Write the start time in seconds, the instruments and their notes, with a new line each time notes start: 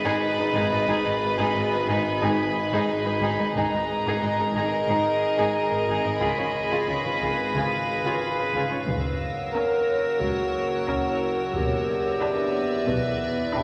Already playing: synth drone G#1, ambient pad G#4 B4 D#5, violin section B5 D#6 A6
0.04 cello section G#2, violin section D#4 G#4
0.38 cello section G#2, violin section D#4 B4
0.54 double bass section G#1, cello section G#2, violin section D#4 G#4
0.71 cello section G#2, violin section D#4 D#5
0.87 double bass section G#1, cello section G#2, violin section D#4 G#4
1.05 cello section G#2, violin section D#4 D#5
1.38 cello section G#2, violin section D#4 G#4
1.55 double bass section G#1, cello section G#2, violin section D#4 D#5
1.71 cello section G#2, violin section D#4 B4
1.87 double bass section G#1, cello section G#2, violin section D#4 G#4
2.11 violin section G#6
2.21 double bass section G#1, cello section G#2, violin section D#4 G#4
2.72 cello section G#2, violin section D#4 G#4
3.05 cello section G#2, violin section D#4 B4
3.21 double bass section G#1, cello section G#2, violin section D#4 G#4
3.38 cello section G#2, violin section D#4 D#5
3.54 double bass section G#1, synth drone G#1, cello section G#2, violin section D#4 G#4 G#5 A#5, ambient pad G#4 A#4 D#5, taiko
3.71 cello section G#2, violin section D#4 D#5
4.05 cello section G#2, violin section D#4 G#4
4.20 double bass section G#1, cello section G#2, violin section D#4 D#5 A#6
4.38 cello section G#2, violin section D#4 A#4
4.53 double bass section G#1, cello section G#2, violin section D#4 G#4
4.87 double bass section G#1, cello section G#2, violin section D#4 G#4 D#6
5.37 cello section G#2, violin section D#4 G#4
5.71 cello section G#2, violin section D#4 A#4
5.87 double bass section G#1, cello section G#2, violin section D#4 G#4
6.05 cello section G#2, violin section D#4 D#5
6.20 double bass section C#2, cello section C#3, violin section F4 G#4 B5, ambient pad B4 F5
6.38 cello section C#3, violin section F4 C#5
6.70 cello section C#3, violin section F4 G#4
6.87 double bass section C#2, cello section C#3, violin section F4 C#5
7.05 cello section C#3, violin section F4 B4
7.20 double bass section C#2, cello section C#3, violin section F4 G#4
7.53 double bass section C#2, cello section C#3, violin section F4 G#4
8.04 cello section C#3, violin section F4 G#4
8.37 cello section C#3, violin section F4 B4
8.54 double bass section C#2, cello section C#3, violin section F4 G#4
8.70 cello section C#3, violin section F4 C#5
8.87 double bass section F#1, synth drone F#1, cello section F#2, ambient pad A#4 C#5 F#5, violin section E6 A#6, taiko
9.54 viola section C#4, violin section A#4 A#5, clarinet A#4
10.20 cello section C#2, double bass section C#2, clarinet F#4, taiko
10.87 viola section C#4, violin section A#4 A#5, taiko
11.53 double bass section E1, cello section E2, synth drone E2, clarinet G4, ambient pad B4 D5 E5, taiko
12.20 viola section D4, violin section G4 B5
12.87 double bass section B1, cello section B2, clarinet B4, taiko
13.54 viola section D4, violin section G4 B5, taiko